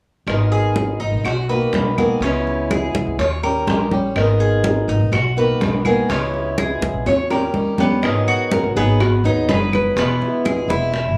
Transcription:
0.27 G#1 D#3 G#3 B3 D#4 A#4, high bongo, high conga, claves
0.52 G#4, high conga
0.76 high bongo, high conga
1.00 G#1 D#4, high conga
1.12 A#1
1.24 B1 F#4, muted steel-string acoustic guitar stroke, high bongo, high conga, claves
1.49 D#3 A#3 B3 F#4 B4, high conga
1.72 B1 D#3 A#3 B3 F#4, high bongo, low bongo, high conga
1.98 D#3 A#3 B3 F#4 G#4, high conga, claves
2.20 C#2 C#3 E3 G#3 C#4, high bongo, high conga
2.25 B3 E4
2.47 high bongo, high conga
2.71 G#4, high bongo, high conga, claves
2.94 C#2, high bongo, high conga
3.07 C#2
3.19 D#2 C#5, muted steel-string acoustic guitar stroke, high bongo, high conga
3.43 G3 C#4 G4 A#4, high bongo, high conga, claves
3.67 A#1 D#3 G3 C#4 G4, high bongo, low bongo, high conga
3.91 G3 C#4 G4, high conga
4.15 G#1 D#3 G#3 B3 D#4 A#4, high bongo, high conga, claves
4.40 G#4, high conga
4.64 high bongo, high conga
4.88 G#1 D#4, high conga
5.00 A#1
5.12 B1 F#4, muted steel-string acoustic guitar stroke, high bongo, high conga, claves
5.37 D#3 A#3 B3 F#4 B4, high conga
5.60 B1 D#3 A#3 B3 F#4, high bongo, low bongo, high conga
5.85 D#3 A#3 B3 F#4 G#4, high conga, claves
6.09 C#2 C#3 E3 G#3 B3 C#4 E4, high bongo, high conga
6.34 high bongo, high conga
6.58 G#4, high bongo, high conga, claves
6.81 C#2, high bongo, high conga
6.94 A#1
7.06 D#2 C#5, muted steel-string acoustic guitar stroke, high bongo, high conga
7.30 G3 C#4 G4 A#4, high bongo, high conga, claves
7.54 D#2 D#3 G3 C#4 G4, high conga
7.78 G3 B3 C#4 G4, low bongo, high conga
8.02 G#1 D#3 F#3 B3 D#4 G#4, high bongo, high conga, claves
8.27 F#4, high conga
8.52 A#4, high bongo, high conga
8.63 G#1
8.76 G#1 F#3 B3 D#4 G#4, high conga
9.00 F#4, muted steel-string acoustic guitar stroke, high bongo, high conga, claves
9.24 D#2 F#3 B3 D#4 G#4, high conga
9.49 F#1 F#3 B3 D#4 G#4 B4, high bongo, low bongo, high conga
9.73 B4, high conga, claves
9.96 E1 B2 E3 G#3 B3 E4, high bongo, high conga
10.22 high bongo, high conga
10.45 G#4, high bongo, high conga, claves
10.56 E1
10.68 E1 E3 G#3 B3 E4, high bongo, high conga
10.92 muted steel-string acoustic guitar stroke, high bongo, high conga

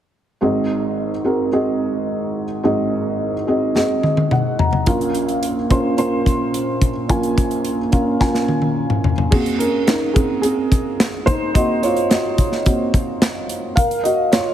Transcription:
0.41 G#1 G#2 C4 F#4 G#4 D#5
1.24 C4 F#4 G#4 A#4
1.52 C4 F#4 G#4 D#5
2.63 G#1 G#2 C4 F#4 G#4 D#5
3.47 C4 F#4 G#4 D#5
3.75 C4 F#4 G#4 D#5, snare
4.03 D#5, high tom
4.17 high tom
4.31 F#5, mid tom
4.59 A#5, floor tom
4.73 floor tom
4.86 A#1 A#2 C#4 F4 A#4 F5, kick, closed hi-hat
5.01 closed hi-hat
5.15 closed hi-hat
5.29 closed hi-hat
5.43 closed hi-hat
5.70 C#4 F4 A#4 C5, kick, closed hi-hat
5.97 C#4 F4 A#4 C5, closed hi-hat
6.26 kick, closed hi-hat
6.54 closed hi-hat
6.82 kick, closed hi-hat
7.08 A#1 A#2 C#4 F4 A#4 G#5, kick, closed hi-hat
7.23 closed hi-hat
7.38 kick, closed hi-hat
7.51 closed hi-hat
7.65 closed hi-hat
7.92 C#4 F4 A#4 F5, kick, closed hi-hat
8.19 C#4 F4 A#4 G#5, kick, snare
8.35 snare
8.48 high tom
8.62 high tom
8.90 mid tom
9.04 floor tom
9.18 floor tom
9.31 A#3 C4 F#4 G#4, kick, crash
9.46 closed hi-hat
9.59 C#4 A#4, closed hi-hat
9.87 D#4 A#4, snare, closed hi-hat
10.14 C4 G#4, kick, closed hi-hat
10.42 C4 G#4, closed hi-hat
10.72 kick, closed hi-hat
11.00 snare, closed hi-hat
11.26 D#4 C5, kick, closed hi-hat
11.54 A#3 C4 F#4 D#5, kick, closed hi-hat
11.83 F4 C#5, closed hi-hat
11.97 closed hi-hat
12.10 F#4 D#5, snare, closed hi-hat
12.38 kick, closed hi-hat
12.52 snare
12.65 A#3 C4 F#4, kick, closed hi-hat
12.94 kick, closed hi-hat
13.22 snare, closed hi-hat
13.49 closed hi-hat
13.76 A#4 F5, kick, closed hi-hat
13.91 closed hi-hat
14.04 F#4 D#5, closed hi-hat
14.32 F4 C#5, snare, closed hi-hat

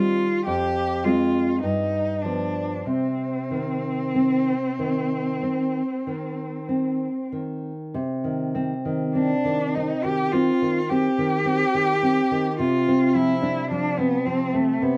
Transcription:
Already playing: D#3 G3 C4 F4
0.46 F2 G4
1.03 G#3 C4 F4
1.62 G2 D#4
2.22 F3 B3 D4
2.85 C3 C4
3.51 D#3
4.15 C4
4.79 D#3
5.43 C4
6.07 D#3
6.69 C4
7.32 D#3
7.94 C3
8.24 D#3
8.55 C4
8.85 D#3
9.15 C4 D4
9.45 D#3
9.75 C4 D#4
10.04 D#3 G4
10.32 C4 F4
10.62 D#3
10.89 C4 G4
11.18 D#3
11.45 C4
11.74 D#3
12.03 C4
12.31 D#3
12.59 C3 F4
12.88 C4
13.15 F3 E4
13.42 D4
13.71 F3 D4
13.98 B3 C4
14.26 F3 C4
14.53 A3 C4
14.82 C3 B3

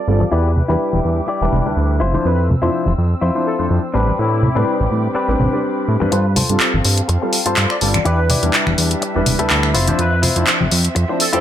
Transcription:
Already playing: A4 D5 F5
0.07 G1 G3 C4 F4 A4
0.20 muted clean electric guitar stroke, high conga, shaker
0.31 E2 E4 G4 B4 D5 E5 D6, shaker
0.56 low conga, shaker
0.68 E2 G3 D4 E4 G4 B4
0.80 shaker
0.93 E1, high conga, shaker
1.05 E2, shaker
1.28 E4 G4 D5, shaker
1.41 E1 G3 D4 E4 B4
1.52 E1, low conga, shaker
1.65 D2 G3 D4 E4 B4
1.76 D2, shaker
2.00 F1 C4 E4 F4 C5 E6, shaker
2.14 F3 D4 E4 C5, high conga, shaker
2.25 F2 B4, shaker
2.50 low conga, shaker
2.62 F2 F3 D4 E4 F4 C5, shaker
2.74 shaker
2.86 F1, high conga, shaker
2.98 F2, shaker
3.21 F2 E4 F4 C5, shaker
3.35 F3 D4 E4 C5
3.46 A4, shaker
3.59 F2 F3 D4 E4 A4 C5, shaker
3.70 F2, shaker
3.94 A1 G3 C4 D4 G4 B4 G5 B5 D6, shaker
4.08 high conga, shaker
4.19 A2 E4, shaker
4.33 shaker
4.43 low conga, shaker
4.55 A2 G3 C4 D4 G4 B4, shaker
4.67 shaker
4.80 A1, high conga, shaker
4.91 A2, shaker
5.04 shaker
5.15 C4 D4 G4 B4, shaker
5.28 A1 G3 C4 D4 B4
5.40 A1, low conga, shaker
5.52 G3 C4 D4 B4, shaker
5.63 shaker
5.77 shaker
5.88 A2, shaker
6.00 G2 G3 C4 D4 B4, muted clean electric guitar stroke, high conga, shaker
6.12 G2 C4 F4 A4 B4 C5 F5, closed hi-hat, shaker
6.36 F4 A4 C5, open hi-hat, low conga, shaker
6.49 G2 G3 C4 F4 A4, closed hi-hat
6.60 clap, closed hi-hat, shaker
6.74 G1, high conga
6.84 G2, muted clean electric guitar stroke, open hi-hat
6.97 closed hi-hat
7.08 F2, muted clean electric guitar stroke, closed hi-hat
7.21 G3 C4 F4 A4, muted clean electric guitar stroke
7.33 open hi-hat, shaker
7.46 G2 G3 C4 F4 A4 C5, closed hi-hat
7.57 G2, clap, closed hi-hat
7.70 D5, finger snap
7.81 G1 G3 C4 F4 A4, open hi-hat
7.94 finger snap, closed hi-hat, high conga, shaker
8.05 E2 D4 E4 G4 B4 D5 E5, closed hi-hat
8.30 E4 G4 D5, open hi-hat, low conga, shaker
8.42 E2 G3 D4 E4 B4, closed hi-hat
8.53 clap, closed hi-hat
8.67 E1, finger snap, high conga
8.78 E2, muted clean electric guitar stroke, open hi-hat
8.91 closed hi-hat
9.02 muted clean electric guitar stroke, closed hi-hat, shaker
9.15 E1 G3 D4 E4 B4, muted clean electric guitar stroke
9.26 E1, open hi-hat, low conga, shaker
9.39 D2 G3 D4 E4 G4 A4 B4, closed hi-hat, shaker
9.50 D2, clap, closed hi-hat
9.63 finger snap
9.74 F1 C4 E4 F4 C5, open hi-hat
9.88 F3 D4 E4 C5, closed hi-hat, high conga, shaker
9.99 F2 B4, closed hi-hat
10.22 E4 F4 C5, open hi-hat, low conga, shaker
10.36 F2 F3 D4 E4 C5, closed hi-hat
10.47 clap, closed hi-hat
10.61 F1, high conga
10.71 F2, muted clean electric guitar stroke, open hi-hat, shaker
10.85 closed hi-hat
10.95 F2, muted clean electric guitar stroke, closed hi-hat
11.08 F3 D4 E4 C5, muted clean electric guitar stroke
11.20 A4, open hi-hat
11.33 F2 F3 D4 E4 F4 G4 A4 C5, closed hi-hat

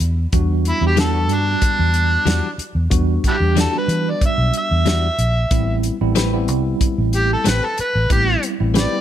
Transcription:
0.00 E2, closed hi-hat
0.33 E2 G3 B3 D4 F#4, kick, closed hi-hat
0.65 E4, closed hi-hat
0.81 E2 G3 B3 D4 F#4
0.86 G4
0.96 E3 G3 D4 F#4, snare, closed hi-hat
1.01 A4
1.14 G3 B3 D4 F#4
1.29 G2, closed hi-hat
1.34 D4
1.62 kick, closed hi-hat
1.79 E2
1.94 closed hi-hat
2.26 E2 E3 G3 D4 F#4, snare, closed hi-hat
2.58 muted fingered electric bass stroke, closed hi-hat
2.75 E2
2.90 E2 G3 B3 D4 F#4, kick, closed hi-hat
3.24 D4 E4 G4, kick, closed hi-hat
3.40 E2 G3 B3 D4 G4
3.56 E3 G3 D4 F#4, snare, closed hi-hat
3.60 A4
3.73 G3 B3 D4 F#4
3.78 B4
3.88 E3, closed hi-hat
4.10 D5
4.21 kick, closed hi-hat
4.25 E5
4.38 B1
4.53 E5, closed hi-hat
4.71 E2
4.86 E3 G3 D4 F#4, snare, closed hi-hat
5.18 A#1, closed hi-hat
5.51 A1 G3 B3 C4 E4, kick, closed hi-hat
5.83 closed hi-hat
6.01 A1 G3 B3 C4 E4
6.15 A3 C4 G4 B4, snare, closed hi-hat
6.33 G3 B3 C4 E4
6.48 C2, closed hi-hat
6.81 kick, closed hi-hat
6.98 A1
7.13 G4, closed hi-hat
7.33 A4
7.44 A1 A3 C4 G4 B4, snare, closed hi-hat
7.65 A4
7.78 B4, muted fingered electric bass stroke, closed hi-hat
7.95 A1
8.10 A1 G3 B3 C4 E4 G4, kick, closed hi-hat
8.43 closed hi-hat
8.60 A1 G3 B3 C4 E4
8.74 A3 C4 G4 B4 D5, snare, closed hi-hat
8.92 G3 B3 C4 E4

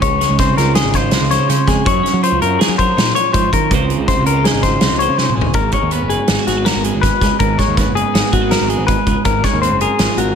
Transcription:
0.02 C#2 C#3 C#5, kick, closed hi-hat
0.21 G#3, snare, closed hi-hat
0.30 C#2
0.39 C4 C5, kick, snare, closed hi-hat
0.48 C2
0.57 C#2 F4 A#4, snare, closed hi-hat
0.75 G#4 D#5, snare, closed hi-hat
0.84 G#1
0.94 F4 C5, kick, snare, closed hi-hat
1.11 C2 C4, snare, closed hi-hat
1.21 C#2
1.31 C5 C#5, snare, closed hi-hat
1.39 C#3
1.49 C#3 C5, snare, closed hi-hat
1.67 F2 G#3 G#4, kick, snare, closed hi-hat
1.85 F#2 F#3 C#5, kick, closed hi-hat
2.03 C#4, snare, closed hi-hat
2.14 F#3
2.23 F4 C5, closed hi-hat
2.32 C#2
2.42 F#2 A#4, closed hi-hat
2.59 G#4, snare, closed hi-hat
2.69 F#3 A#4
2.78 A#4 C5, kick, closed hi-hat
2.97 A#2 D#4, snare, closed hi-hat
3.06 F4
3.15 C#5, closed hi-hat
3.33 G#2 F3 C5, kick, closed hi-hat
3.52 D#3 A#4, kick, closed hi-hat
3.71 C#2 C#3 G#3 C4 F4 C5, kick, closed hi-hat
3.90 G#3, closed hi-hat
3.98 C#2
4.08 C4 C5, kick, snare, closed hi-hat
4.17 C2
4.26 C#2 D#4 A#4, closed hi-hat
4.36 F4
4.44 G#4 D#5, snare, closed hi-hat
4.53 G#1
4.63 F4 C5, kick, snare, closed hi-hat
4.81 C2 C4, snare, closed hi-hat
4.91 C#2
4.99 C5 C#5, closed hi-hat
5.09 C#3
5.18 C3 C#3 C5, snare
5.29 mid tom
5.35 G#1 A#2 G#4
5.41 floor tom
5.53 G#1 G#2 A#4, kick, closed hi-hat
5.72 G#3 C#5, kick, closed hi-hat
5.82 D#2
5.91 B3 B4, closed hi-hat
6.02 F#1
6.09 G#4 B4, closed hi-hat
6.28 G#1 D#4, snare, closed hi-hat
6.39 F#4
6.47 G#1 F#4 G#4, snare, closed hi-hat
6.57 B4
6.65 F#4 A#4, snare, closed hi-hat
6.75 G#1
6.84 G#3 G#4, closed hi-hat
6.95 G#1
7.01 G#2 B4, kick, snare, closed hi-hat
7.21 C#2 G#3, kick, snare, closed hi-hat
7.39 G#1 G#2 A#4, kick, closed hi-hat
7.58 G#3 C#5, kick, snare, closed hi-hat
7.68 D#2
7.77 B3 B4, kick, snare, closed hi-hat
7.86 F#1
7.95 G#4 B4, closed hi-hat
8.14 G#1 F#4, snare, closed hi-hat
8.32 G#1 F#4 G#4, kick, closed hi-hat
8.42 B4
8.51 F#4 A#4, snare, closed hi-hat
8.61 G#1
8.69 G#3 G#4, closed hi-hat
8.79 G#1
8.87 G#2 B4, kick, closed hi-hat
9.06 C#2 G#3, kick, closed hi-hat
9.25 G#1 G#2 A#4, kick, closed hi-hat
9.44 G#3 C#5, kick, snare, closed hi-hat
9.53 D#2
9.62 C4 C5, closed hi-hat
9.71 F#1
9.81 G#4 A#4, closed hi-hat
9.99 G#1 F4, snare, closed hi-hat
10.17 G#1 F#4 A#4, closed hi-hat

